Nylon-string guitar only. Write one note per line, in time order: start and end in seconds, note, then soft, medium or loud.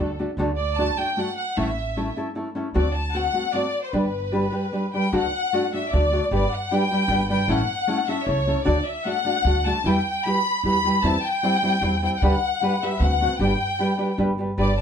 0.00 0.10 A4 medium
0.19 0.30 A3 soft
0.19 0.30 D4 soft
0.19 0.30 F#4 medium
0.19 0.30 A4 soft
0.38 0.49 D3 medium
0.38 0.50 A3 medium
0.38 0.50 D4 medium
0.38 0.50 F#4 medium
0.38 0.50 A4 medium
0.78 0.89 A3 medium
0.78 0.90 D4 medium
0.78 0.90 F#4 medium
0.78 0.91 A4 medium
0.97 1.09 A3 soft
0.97 1.09 D4 soft
0.97 1.10 F#4 soft
0.97 1.10 A4 soft
1.17 1.29 A3 medium
1.17 1.29 D4 soft
1.17 1.29 F#4 soft
1.17 1.30 A4 medium
1.57 1.68 A2 medium
1.57 1.69 E3 medium
1.57 1.69 A3 medium
1.57 1.69 C#4 medium
1.57 1.69 E4 medium
1.57 1.69 A4 medium
1.97 2.08 A3 medium
1.97 2.08 C#4 medium
1.97 2.08 E4 medium
1.97 2.09 A4 medium
2.16 2.28 A3 soft
2.16 2.28 C#4 soft
2.16 2.28 E4 medium
2.16 2.29 A4 medium
2.35 2.47 A3 medium
2.35 2.47 C#4 soft
2.35 2.48 E4 medium
2.35 2.48 A4 medium
2.55 2.67 A3 medium
2.55 2.67 C#4 medium
2.55 2.68 E4 medium
2.55 2.68 A4 soft
2.74 2.87 D3 medium
2.74 2.87 A3 medium
2.74 2.87 C4 medium
2.74 2.87 F#4 medium
2.74 2.87 A4 medium
3.14 3.26 A3 medium
3.14 3.26 C4 medium
3.14 3.26 F#4 medium
3.14 3.27 A4 medium
3.33 3.46 A3 soft
3.33 3.46 C4 soft
3.33 3.46 F#4 soft
3.33 3.46 A4 medium
3.53 3.66 A3 soft
3.53 3.66 C4 soft
3.53 3.66 F#4 soft
3.53 3.67 A4 medium
3.93 4.05 G3 medium
3.93 4.06 D4 medium
3.93 4.06 G4 medium
3.93 4.06 B4 medium
4.32 4.44 G3 medium
4.32 4.45 D4 medium
4.32 4.45 G4 medium
4.32 4.45 B4 medium
4.51 4.64 G3 soft
4.51 4.64 D4 soft
4.51 4.65 G4 medium
4.51 4.65 B4 medium
4.72 4.85 G3 medium
4.72 4.85 D4 medium
4.72 4.85 G4 medium
4.72 4.86 B4 medium
4.93 5.06 G3 soft
4.93 5.05 D4 soft
4.93 5.06 G4 soft
4.93 5.06 B4 medium
5.13 5.25 D3 medium
5.13 5.25 A3 medium
5.13 5.25 D4 medium
5.13 5.25 F#4 medium
5.13 5.25 A4 medium
5.53 5.65 A3 medium
5.53 5.65 D4 medium
5.53 5.65 F#4 medium
5.53 5.65 A4 medium
5.73 5.84 A3 soft
5.73 5.85 D4 soft
5.73 5.85 F#4 medium
5.73 5.85 A4 medium
5.93 6.04 A3 soft
5.93 6.04 D4 medium
5.93 6.05 F#4 soft
5.93 6.05 A4 medium
6.11 6.23 A3 soft
6.11 6.24 D4 soft
6.11 6.24 F#4 soft
6.11 6.24 A4 medium
6.31 6.43 G3 medium
6.31 6.43 D4 medium
6.31 6.44 G4 medium
6.31 6.44 B4 medium
6.71 6.82 G3 medium
6.71 6.83 D4 medium
6.71 6.83 G4 medium
6.71 6.83 B4 medium
6.91 7.02 G3 soft
6.91 7.03 D4 medium
6.91 7.03 G4 soft
6.91 7.03 B4 soft
7.10 7.21 G3 medium
7.10 7.21 D4 medium
7.10 7.22 G4 medium
7.10 7.22 B4 medium
7.29 7.41 G3 soft
7.29 7.41 D4 soft
7.29 7.42 G4 soft
7.29 7.42 B4 medium
7.48 7.60 A2 medium
7.48 7.60 E3 medium
7.48 7.61 A3 medium
7.48 7.61 C#4 medium
7.48 7.61 E4 medium
7.48 7.61 A4 medium
7.87 7.99 A3 medium
7.87 7.99 C#4 medium
7.87 8.00 E4 medium
7.87 8.00 A4 medium
8.07 8.19 A3 soft
8.07 8.19 C#4 medium
8.07 8.20 E4 soft
8.07 8.20 A4 medium
8.28 8.39 A3 medium
8.28 8.39 C#4 soft
8.28 8.39 E4 medium
8.28 8.40 A4 medium
8.46 8.58 A3 soft
8.46 8.59 C#4 soft
8.46 8.59 E4 soft
8.46 8.59 A4 medium
8.65 8.77 D3 medium
8.65 8.78 A3 medium
8.65 8.78 D4 medium
8.65 8.78 F#4 medium
8.65 8.78 A4 medium
9.05 9.17 A3 medium
9.05 9.18 D4 medium
9.05 9.18 F#4 medium
9.05 9.18 A4 medium
9.25 9.37 A3 soft
9.25 9.37 D4 soft
9.25 9.38 F#4 soft
9.25 9.38 A4 medium
9.46 9.57 A3 soft
9.46 9.57 D4 soft
9.46 9.58 F#4 medium
9.46 9.58 A4 medium
9.66 9.77 A3 soft
9.66 9.78 D4 soft
9.66 9.78 F#4 soft
9.66 9.78 A4 soft
9.85 9.97 E3 medium
9.85 9.97 G3 medium
9.85 9.97 E4 medium
9.85 9.98 G4 medium
9.85 9.98 B4 medium
10.25 10.37 G3 medium
10.25 10.37 E4 medium
10.25 10.38 G4 medium
10.25 10.38 B4 medium
10.64 10.76 G3 medium
10.64 10.76 E4 medium
10.64 10.77 G4 soft
10.64 10.77 B4 medium
10.84 10.96 G3 medium
10.84 10.96 E4 soft
10.84 10.97 G4 medium
10.84 10.97 B4 medium
11.03 11.16 E3 medium
11.03 11.15 G3 medium
11.03 11.16 C4 medium
11.03 11.16 E4 medium
11.03 11.16 C5 medium
11.43 11.55 G3 medium
11.43 11.55 C4 medium
11.43 11.55 E4 medium
11.43 11.56 C5 medium
11.62 11.74 G3 soft
11.62 11.75 C4 soft
11.62 11.75 E4 soft
11.62 11.75 C5 medium
11.82 11.94 G3 medium
11.82 11.94 C4 medium
11.82 11.95 E4 medium
11.82 11.94 C5 medium
12.02 12.14 G3 soft
12.02 12.14 C4 soft
12.02 12.14 E4 medium
12.02 12.14 C5 medium
12.22 12.34 D3 medium
12.22 12.34 G3 medium
12.22 12.34 D4 medium
12.22 12.34 G4 medium
12.22 12.34 B4 medium
12.61 12.73 G3 medium
12.61 12.73 D4 medium
12.61 12.73 G4 medium
12.61 12.74 B4 medium
12.82 12.93 G3 soft
12.82 12.93 D4 soft
12.82 12.94 G4 medium
12.82 12.94 B4 medium
13.00 13.12 A3 medium
13.00 13.13 C4 soft
13.00 13.13 F#4 soft
13.00 13.13 C5 medium
13.20 13.32 A3 soft
13.20 13.33 C4 soft
13.20 13.33 F#4 soft
13.20 13.33 C5 soft
13.40 13.52 G3 medium
13.40 13.52 D4 medium
13.40 13.52 G4 medium
13.40 13.52 B4 medium
13.79 13.91 G3 medium
13.79 13.91 D4 medium
13.79 13.92 G4 medium
13.79 13.91 B4 medium
13.97 14.10 G3 soft
13.97 14.10 D4 medium
13.97 14.11 G4 medium
13.97 14.11 B4 medium
14.18 14.30 G3 medium
14.18 14.31 D4 medium
14.18 14.31 G4 medium
14.18 14.32 B4 medium
14.38 14.51 G3 soft
14.38 14.51 D4 soft
14.38 14.51 G4 soft
14.38 14.52 B4 medium
14.58 14.70 G3 medium
14.58 14.70 D4 medium
14.58 14.70 G4 medium
14.58 14.70 B4 medium